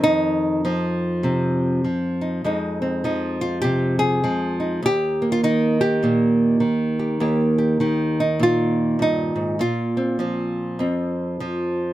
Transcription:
0.00 0.64 D#3 medium
0.00 2.20 D#4 loud
0.06 2.41 F2 medium
0.65 1.83 F3 medium
0.65 1.24 C4 soft
1.23 1.83 C3 medium
1.23 2.41 C4 soft
1.84 2.41 F3 medium
2.21 2.46 D#4 soft
2.44 4.80 F2 medium
2.44 4.22 G#3 soft
2.44 2.81 C4 soft
2.44 3.05 D#4 soft
2.82 4.80 C4 soft
3.04 4.22 F3 medium
3.04 3.41 D#4 soft
3.41 3.61 F4 medium
3.62 4.23 C3 medium
3.62 3.99 G4 medium
3.99 4.59 G#4 medium
4.24 4.80 F3 medium
4.24 4.83 G#3 soft
4.60 4.85 D#4 soft
4.83 7.19 D#2 medium
4.83 5.32 G4 loud
5.22 6.03 A#3 soft
5.32 5.42 F4 medium
5.43 6.59 D#3 medium
5.43 5.79 D#4 loud
5.81 6.98 G4 medium
6.03 6.62 A#2 medium
6.03 7.20 A#3 soft
6.60 7.79 D#3 medium
6.99 7.19 G4 soft
7.20 8.99 D#2 medium
7.20 9.97 A#3 soft
7.20 7.57 G4 soft
7.58 7.80 G4 soft
7.80 9.60 D#3 medium
7.80 8.18 G4 soft
8.20 8.42 D#4 medium
8.39 9.58 A#2 medium
8.39 9.01 F4 loud
8.99 9.35 G2 medium
8.99 9.60 D#4 medium
9.36 9.59 G#2 medium
9.59 10.79 A#2 medium
9.59 11.93 F4 loud
9.97 10.20 C4 soft
10.19 11.39 F3 medium
10.19 10.80 C4 soft
10.79 11.93 F2 medium
10.79 11.93 C4 medium
11.40 11.93 F3 medium

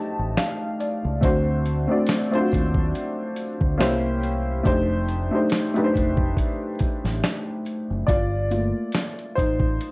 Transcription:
0.00 1.21 A3 medium
0.00 1.23 D4 medium
0.00 1.24 D#4 medium
0.00 1.24 G4 medium
0.00 1.24 C5 medium
0.00 0.27 D5 medium
0.00 0.28 D#5 loud
0.00 0.34 A5 medium
0.19 0.36 A1 medium
0.37 0.77 F5 medium
0.37 snare loud
0.37 closed hi-hat medium
0.80 1.20 D5 medium
0.80 closed hi-hat medium
0.80 tambourine medium
1.05 1.21 C#2 loud
1.21 1.86 D2 loud
1.21 1.75 A3 medium
1.21 1.75 C4 medium
1.21 1.76 D4 medium
1.21 1.76 F#4 medium
1.21 1.77 C5 medium
1.21 kick loud
1.21 closed hi-hat loud
1.65 closed hi-hat medium
1.65 tambourine soft
1.88 2.22 A3 medium
1.88 2.22 C4 medium
1.88 2.23 D4 medium
1.88 2.23 F#4 medium
1.88 2.24 D5 medium
2.06 snare loud
2.06 closed hi-hat medium
2.31 3.69 A3 medium
2.31 3.69 C4 medium
2.31 3.70 D4 medium
2.31 2.39 F4 medium
2.31 3.71 C5 loud
2.31 closed hi-hat soft
2.40 3.74 F#4 medium
2.51 2.92 D#2 loud
2.51 kick medium
2.51 closed hi-hat medium
2.51 tambourine medium
2.74 kick medium
2.95 closed hi-hat medium
3.36 closed hi-hat medium
3.36 tambourine soft
3.61 3.78 D2 loud
3.61 kick medium
3.78 4.61 C2 medium
3.78 4.50 A#3 medium
3.78 4.51 C#4 medium
3.78 4.51 E4 medium
3.78 4.52 G4 medium
3.78 4.52 C5 loud
3.78 snare loud
3.78 closed hi-hat loud
4.23 closed hi-hat medium
4.23 tambourine medium
4.63 5.29 F1 loud
4.63 5.18 A3 medium
4.63 5.18 D4 medium
4.63 5.18 D#4 medium
4.63 5.19 G4 medium
4.63 5.19 C5 loud
4.63 kick loud
4.63 closed hi-hat loud
5.08 closed hi-hat medium
5.08 tambourine soft
5.31 5.65 A3 medium
5.31 5.66 D4 medium
5.31 5.66 D#4 medium
5.31 5.67 G4 medium
5.31 5.67 C5 medium
5.50 snare medium
5.50 closed hi-hat medium
5.74 7.12 A3 medium
5.74 7.12 D4 medium
5.74 7.13 D#4 medium
5.74 7.13 G4 medium
5.74 5.82 B4 medium
5.74 closed hi-hat soft
5.84 7.17 C5 medium
5.95 6.34 F1 medium
5.95 kick medium
5.95 closed hi-hat medium
5.95 tambourine medium
6.17 kick medium
6.36 kick medium
6.36 closed hi-hat medium
6.79 kick medium
6.79 closed hi-hat medium
6.79 tambourine soft
7.04 7.21 A1 medium
7.04 snare soft
7.04 closed hi-hat soft
7.24 snare loud
7.24 closed hi-hat loud
7.65 closed hi-hat medium
7.65 tambourine medium
7.90 8.07 F#1 medium
8.07 8.71 G1 loud
8.07 8.50 F4 medium
8.07 9.32 D5 loud
8.07 kick loud
8.07 closed hi-hat medium
8.51 9.10 A3 medium
8.51 9.10 A#3 soft
8.51 9.11 F4 medium
8.51 closed hi-hat medium
8.51 tambourine soft
8.92 snare loud
8.92 closed hi-hat medium
9.19 closed hi-hat soft
9.36 9.77 A1 medium
9.36 9.92 D#4 medium
9.36 9.92 C5 medium
9.36 kick medium
9.36 closed hi-hat medium
9.36 tambourine medium
9.60 kick medium
9.81 closed hi-hat medium

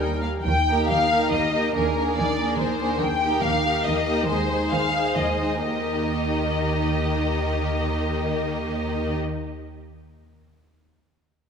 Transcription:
0.00 0.22 D#2 soft
0.00 0.23 D#2 soft
0.00 0.23 G3 soft
0.00 0.24 A#4 soft
0.00 0.23 G5 soft
0.22 0.30 F5 soft
0.45 0.82 D#2 soft
0.45 0.82 D#3 medium
0.45 0.86 G5 medium
0.67 1.09 A#3 soft
0.67 1.10 D#4 soft
0.67 1.09 G4 soft
0.67 1.09 A#4 soft
0.89 1.25 D#2 soft
0.89 1.25 D#3 soft
0.89 1.32 F5 medium
1.10 1.52 A#3 soft
1.10 1.52 D#4 soft
1.10 1.51 G4 soft
1.10 1.52 A#4 soft
1.32 1.68 D#2 soft
1.32 1.68 D#3 soft
1.32 1.74 D#5 medium
1.53 1.73 A#3 soft
1.53 1.74 D#4 soft
1.53 1.74 G4 soft
1.53 1.74 A#4 soft
1.75 2.10 D#2 soft
1.75 2.10 D#3 soft
1.75 1.95 A#3 soft
1.75 1.95 D4 soft
1.75 1.96 G#4 soft
1.75 2.16 A#4 medium
1.75 1.96 A#4 soft
1.97 2.38 A#3 soft
1.97 2.38 D4 soft
1.97 2.38 G#4 soft
1.97 2.38 A#4 soft
2.17 2.53 D#2 soft
2.17 2.53 D#3 soft
2.17 2.59 D5 medium
2.39 2.80 A#3 soft
2.39 2.80 D4 soft
2.39 2.80 G#4 soft
2.39 2.80 A#4 soft
2.60 2.95 D#2 soft
2.60 2.95 D#3 soft
2.60 3.01 C5 medium
2.81 3.01 A#3 soft
2.81 3.01 D4 soft
2.81 3.01 G#4 soft
2.81 3.02 A#4 soft
3.02 3.37 D#2 medium
3.02 3.37 D#3 soft
3.02 3.43 G5 medium
3.23 3.63 A#3 soft
3.23 3.64 D#4 soft
3.23 3.64 G4 soft
3.23 3.64 A#4 soft
3.43 3.79 D#2 soft
3.43 3.79 D#3 soft
3.43 3.85 F5 medium
3.65 4.06 A#3 soft
3.65 4.06 D#4 soft
3.65 4.06 G4 soft
3.65 4.06 A#4 soft
3.85 4.22 D#2 soft
3.85 4.22 D#3 soft
3.85 4.28 D#5 medium
4.07 4.29 A#3 soft
4.07 4.27 D#4 soft
4.07 4.28 G4 soft
4.07 4.28 A#4 soft
4.28 4.66 D#2 medium
4.28 4.65 D#3 medium
4.28 4.50 G#3 soft
4.28 4.50 D#4 soft
4.28 4.50 G#4 soft
4.28 4.71 C5 medium
4.28 4.50 C5 soft
4.51 4.94 G#3 soft
4.51 4.94 D#4 soft
4.51 4.94 G#4 soft
4.51 4.94 C5 soft
4.71 5.10 D#2 soft
4.71 5.10 D#3 soft
4.71 5.17 F5 medium
4.95 5.40 G#3 soft
4.95 5.40 D#4 soft
4.95 5.40 G#4 soft
4.95 5.41 C5 soft
5.17 5.57 D#2 soft
5.17 5.56 D#3 soft
5.17 5.63 D#5 soft
5.41 5.64 G#3 soft
5.41 5.63 D#4 soft
5.41 5.65 G#4 soft
5.41 5.64 C5 soft
5.63 9.18 D#2 soft
5.63 9.18 D#3 soft
5.63 9.18 A#3 soft
5.63 9.18 D#4 soft
5.63 9.17 G4 soft
5.63 9.17 A#4 soft
5.63 9.17 D#5 soft

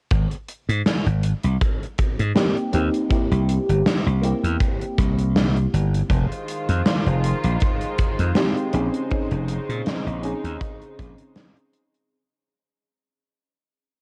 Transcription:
0.11 0.26 G#1 loud
0.11 kick loud
0.11 closed hi-hat medium
0.31 closed hi-hat soft
0.49 closed hi-hat medium
0.69 0.81 G#2 loud
0.69 closed hi-hat medium
0.86 snare loud
0.86 closed hi-hat medium
1.06 1.32 G#1 medium
1.06 closed hi-hat soft
1.23 closed hi-hat loud
1.44 1.56 C2 loud
1.44 closed hi-hat medium
1.61 kick loud
1.61 closed hi-hat medium
1.83 closed hi-hat soft
1.98 kick loud
1.98 closed hi-hat medium
2.19 2.31 G#2 medium
2.19 closed hi-hat medium
2.35 2.69 A#3 medium
2.35 2.69 C4 medium
2.35 2.70 D#4 medium
2.35 2.70 G4 medium
2.35 snare loud
2.35 closed hi-hat medium
2.57 closed hi-hat soft
2.72 2.88 D#2 loud
2.72 3.06 A#3 medium
2.72 3.07 C4 medium
2.72 3.07 D#4 medium
2.72 3.07 G4 loud
2.72 closed hi-hat medium
2.94 closed hi-hat medium
3.09 4.19 A#3 medium
3.09 4.19 C4 medium
3.09 4.20 E4 medium
3.09 4.20 G4 medium
3.09 muted slap bass stroke soft
3.09 kick loud
3.09 closed hi-hat medium
3.31 3.57 C2 loud
3.31 closed hi-hat soft
3.49 closed hi-hat loud
3.69 3.81 G1 medium
3.69 closed hi-hat medium
3.86 snare loud
3.86 closed hi-hat medium
4.06 4.32 C2 medium
4.06 closed hi-hat soft
4.21 6.08 A#3 medium
4.21 6.09 C4 medium
4.21 6.09 E4 medium
4.21 6.10 G4 loud
4.21 closed hi-hat medium
4.44 4.56 E2 medium
4.44 closed hi-hat medium
4.60 kick loud
4.60 closed hi-hat medium
4.81 closed hi-hat soft
4.98 5.66 C2 medium
4.98 kick loud
4.98 closed hi-hat loud
5.19 closed hi-hat medium
5.36 snare loud
5.36 closed hi-hat medium
5.57 closed hi-hat soft
5.73 6.01 G1 medium
5.73 closed hi-hat medium
5.94 closed hi-hat medium
6.10 6.25 F1 loud
6.10 8.71 D#3 medium
6.10 12.07 G#3 medium
6.10 8.71 F4 medium
6.10 12.07 C5 medium
6.10 kick loud
6.10 closed hi-hat medium
6.32 closed hi-hat soft
6.48 closed hi-hat loud
6.69 6.81 F2 medium
6.69 closed hi-hat medium
6.86 snare loud
6.86 closed hi-hat medium
7.06 7.32 F1 medium
7.06 closed hi-hat soft
7.24 closed hi-hat loud
7.44 7.56 A#1 medium
7.44 closed hi-hat medium
7.60 kick loud
7.60 closed hi-hat medium
7.81 closed hi-hat soft
7.98 kick loud
7.98 closed hi-hat loud
8.19 8.31 F2 medium
8.19 closed hi-hat medium
8.35 8.69 G#3 medium
8.35 8.69 C4 medium
8.35 8.70 D#4 medium
8.35 8.70 G4 loud
8.35 snare loud
8.35 closed hi-hat medium
8.57 closed hi-hat soft
8.73 8.88 A#1 loud
8.73 12.08 C#3 medium
8.73 9.07 C4 medium
8.73 9.07 C#4 medium
8.73 12.08 D#4 medium
8.73 9.07 D#4 medium
8.73 9.07 G#4 loud
8.73 closed hi-hat loud
8.94 closed hi-hat medium
9.09 10.19 C4 medium
9.09 10.19 C#4 medium
9.09 10.20 D#4 medium
9.09 10.20 G#4 medium
9.09 muted slap bass stroke soft
9.09 kick loud
9.09 closed hi-hat medium
9.31 9.57 F1 loud
9.31 closed hi-hat soft
9.48 closed hi-hat loud
9.69 9.81 A#2 loud
9.69 closed hi-hat medium
9.86 snare loud
9.86 closed hi-hat medium
10.06 10.32 A#1 medium
10.06 closed hi-hat soft
10.22 12.08 C4 medium
10.22 12.09 C#4 medium
10.22 12.09 D#4 medium
10.22 12.10 G#4 loud
10.22 closed hi-hat loud
10.44 10.56 D#2 medium
10.44 closed hi-hat medium
10.61 kick loud
10.61 closed hi-hat medium
10.82 closed hi-hat soft
10.99 11.13 A#1 medium
10.99 kick loud
10.99 closed hi-hat loud
11.18 closed hi-hat medium
11.36 snare loud
11.36 closed hi-hat medium
11.57 closed hi-hat soft
11.73 closed hi-hat medium
11.94 closed hi-hat medium

